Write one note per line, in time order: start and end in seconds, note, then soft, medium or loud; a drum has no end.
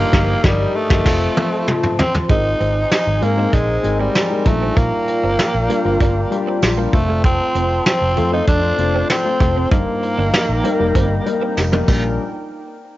0.00 1.07 G2 loud
0.00 0.46 A#3 loud
0.00 0.12 D#4 loud
0.00 0.13 G4 loud
0.00 1.04 G4 medium
0.00 0.14 A#4 loud
0.00 1.04 D#5 medium
0.00 1.04 A#5 medium
0.00 1.04 D#6 medium
0.12 0.34 G1 loud
0.12 0.34 D#4 loud
0.12 0.34 G4 loud
0.12 0.34 A#4 loud
0.12 kick loud
0.12 snare loud
0.43 0.65 G1 loud
0.43 0.77 G3 loud
0.43 0.65 D#4 loud
0.43 0.65 G4 loud
0.43 0.65 A#4 loud
0.43 kick loud
0.43 snare loud
0.76 1.99 A3 loud
0.90 1.04 G1 loud
0.90 1.03 D#4 loud
0.90 1.03 G4 loud
0.90 1.04 A#4 loud
0.90 kick loud
0.90 snare loud
1.05 1.27 F1 loud
1.05 1.26 C4 loud
1.05 2.28 F4 medium
1.05 1.27 F4 loud
1.05 1.27 A4 loud
1.05 2.28 C5 medium
1.05 2.28 A5 medium
1.05 2.28 C6 medium
1.05 kick loud
1.05 snare loud
1.05 crash medium
1.37 high tom medium
1.68 mid tom medium
1.83 mid tom medium
1.99 2.13 C4 loud
1.99 floor tom loud
2.15 floor tom medium
2.29 2.53 G#1 loud
2.29 3.18 G#2 medium
2.29 2.89 G#3 medium
2.29 2.40 G#3 medium
2.29 2.89 C4 medium
2.29 2.90 D#4 medium
2.29 4.44 D#4 medium
2.29 2.88 D#4 loud
2.29 2.90 A#4 medium
2.29 4.44 C5 medium
2.29 4.44 G#5 medium
2.29 6.89 A#5 medium
2.29 kick loud
2.29 closed hi-hat medium
2.45 muted clean electric guitar stroke soft
2.60 2.84 G#1 medium
2.60 2.71 C4 medium
2.60 closed hi-hat medium
2.91 3.24 D#4 loud
2.91 muted clean electric guitar stroke soft
2.91 snare loud
2.91 closed hi-hat medium
2.91 tambourine medium
3.07 3.19 G#1 medium
3.21 3.45 G#2 medium
3.21 3.32 G#3 medium
3.21 3.33 A#3 medium
3.21 3.55 A#3 medium
3.21 3.32 C4 medium
3.21 3.32 D#4 medium
3.21 3.32 A#4 medium
3.21 closed hi-hat medium
3.37 3.67 G#3 medium
3.37 3.68 C4 medium
3.37 3.49 C4 medium
3.37 3.68 D#4 medium
3.37 3.68 A#4 medium
3.53 3.76 A#1 medium
3.53 3.99 G#3 medium
3.53 3.64 D4 medium
3.53 kick medium
3.53 closed hi-hat medium
3.68 muted clean electric guitar stroke soft
3.83 4.07 G#1 medium
3.83 4.14 G#3 medium
3.83 4.14 C4 medium
3.83 4.14 D#4 medium
3.83 4.14 A#4 medium
3.83 closed hi-hat medium
3.99 4.49 G3 medium
3.99 4.10 C4 medium
4.15 muted clean electric guitar stroke soft
4.15 snare loud
4.15 closed hi-hat medium
4.15 tambourine medium
4.30 4.46 G#3 medium
4.30 4.46 C4 medium
4.30 4.46 D#4 medium
4.30 4.46 A#4 medium
4.46 4.69 A#1 medium
4.46 5.35 A#2 medium
4.46 5.45 G3 medium
4.46 4.79 A3 medium
4.46 4.57 A#3 medium
4.46 5.45 D4 medium
4.46 9.68 F4 medium
4.46 5.45 F4 medium
4.46 6.91 D5 medium
4.46 6.91 G5 medium
4.46 5.45 A#5 medium
4.46 kick medium
4.46 closed hi-hat medium
4.62 4.72 C4 medium
4.76 4.88 A#1 loud
4.76 4.88 A#3 medium
4.76 6.67 A#3 loud
4.76 kick loud
4.76 closed hi-hat medium
5.07 muted clean electric guitar stroke soft
5.07 closed hi-hat medium
5.23 5.35 G1 medium
5.23 5.34 C4 medium
5.39 snare loud
5.39 closed hi-hat medium
5.39 tambourine medium
5.54 5.66 A#1 medium
5.68 5.79 G3 medium
5.68 5.81 A#3 medium
5.68 5.79 D4 medium
5.68 5.79 F4 medium
5.68 5.80 A#4 medium
5.68 closed hi-hat medium
5.84 5.97 G1 medium
5.84 6.15 G3 medium
5.84 5.96 C4 medium
5.84 6.15 D4 medium
5.84 6.15 F4 medium
5.84 6.15 A#4 medium
6.00 6.24 G1 loud
6.00 6.11 D4 medium
6.00 kick medium
6.00 closed hi-hat medium
6.31 6.61 G3 medium
6.31 6.61 D4 medium
6.31 6.62 F4 medium
6.31 6.62 G4 medium
6.31 muted clean electric guitar stroke soft
6.31 closed hi-hat medium
6.47 6.58 C4 medium
6.62 6.86 A#1 medium
6.62 snare loud
6.62 closed hi-hat medium
6.62 tambourine medium
6.77 6.93 G3 medium
6.77 6.89 A#3 medium
6.77 6.93 D4 medium
6.77 6.92 F4 medium
6.77 6.93 A#4 medium
6.93 7.40 F1 loud
6.93 7.92 A3 medium
6.93 7.22 A3 medium
6.93 7.92 C4 medium
6.93 7.92 F4 medium
6.93 9.69 C5 medium
6.93 7.92 C5 medium
6.93 9.69 A5 medium
6.93 9.69 C6 medium
6.93 muted clean electric guitar stroke soft
6.93 kick medium
6.93 closed hi-hat medium
7.09 7.20 A3 medium
7.24 7.35 A3 medium
7.24 7.83 C4 loud
7.24 kick loud
7.24 closed hi-hat medium
7.40 muted clean electric guitar stroke soft
7.55 7.78 F1 loud
7.55 7.66 C4 medium
7.55 closed hi-hat medium
7.86 8.30 C4 loud
7.86 muted clean electric guitar stroke soft
7.86 snare loud
7.86 closed hi-hat medium
7.86 tambourine medium
8.01 8.19 F1 loud
8.17 8.40 F2 medium
8.17 8.27 A3 medium
8.17 8.28 A3 medium
8.17 8.27 C4 medium
8.17 8.27 F4 medium
8.17 8.28 A4 medium
8.17 closed hi-hat medium
8.32 8.62 A3 medium
8.32 8.63 C4 medium
8.32 8.43 C4 medium
8.32 8.47 D#4 loud
8.32 8.63 F4 medium
8.32 8.63 C5 medium
8.47 8.71 F2 loud
8.47 8.59 D4 medium
8.47 9.06 D4 loud
8.47 kick medium
8.47 closed hi-hat medium
8.64 muted clean electric guitar stroke soft
8.78 9.02 F1 medium
8.78 9.09 A3 medium
8.78 9.09 C4 medium
8.78 9.09 F4 medium
8.78 9.09 C5 medium
8.78 closed hi-hat medium
8.95 9.06 C4 medium
9.10 9.68 C4 medium
9.10 muted clean electric guitar stroke soft
9.10 snare loud
9.10 closed hi-hat loud
9.10 tambourine medium
9.25 9.55 A3 medium
9.25 9.55 C4 medium
9.25 9.55 F4 medium
9.25 9.56 C5 medium
9.40 9.64 F1 loud
9.40 9.52 A3 medium
9.40 kick medium
9.40 closed hi-hat medium
9.57 9.67 C4 medium
9.71 9.83 G1 loud
9.71 10.60 G2 medium
9.71 10.31 G3 medium
9.71 11.53 A#3 medium
9.71 10.32 A#3 medium
9.71 11.86 D#4 medium
9.71 10.32 D#4 medium
9.71 9.83 D#4 medium
9.71 11.86 A#4 medium
9.71 10.32 A#4 medium
9.71 11.86 G5 medium
9.71 11.86 A#5 medium
9.71 kick loud
9.71 closed hi-hat medium
10.03 muted clean electric guitar stroke soft
10.03 closed hi-hat medium
10.18 10.30 G1 medium
10.18 10.29 D4 medium
10.34 muted clean electric guitar stroke soft
10.34 snare loud
10.34 closed hi-hat medium
10.34 tambourine medium
10.34 tambourine loud
10.49 10.61 A#1 medium
10.64 10.74 G3 medium
10.64 10.74 A#3 medium
10.64 10.75 C4 medium
10.64 10.75 D#4 medium
10.64 10.75 A#4 loud
10.64 closed hi-hat medium
10.79 10.92 F1 medium
10.79 11.10 G3 medium
10.79 11.10 A#3 medium
10.79 10.91 A#3 medium
10.79 11.10 D#4 medium
10.79 11.10 A#4 loud
10.95 11.19 G1 loud
10.95 11.06 C4 medium
10.95 kick medium
10.95 closed hi-hat loud
11.26 11.56 G3 medium
11.26 11.56 A#3 medium
11.26 11.57 D#4 medium
11.26 11.57 A#4 loud
11.26 muted clean electric guitar stroke soft
11.26 closed hi-hat medium
11.41 11.52 C4 medium
11.57 11.81 F1 loud
11.57 snare medium
11.57 tambourine medium
11.72 11.87 G3 medium
11.72 11.88 A#3 medium
11.72 11.83 A#3 medium
11.72 11.88 D#4 medium
11.72 11.87 A#4 loud
11.72 high tom medium
11.87 12.17 A#1 medium
11.87 12.17 G3 medium
11.87 12.17 A#3 medium
11.87 12.07 A#3 medium
11.87 12.17 D4 medium
11.87 12.17 F4 medium
11.87 12.17 A#4 medium
11.87 12.17 D5 medium
11.87 12.17 G5 medium
11.87 kick loud
11.87 crash medium
11.87 tambourine medium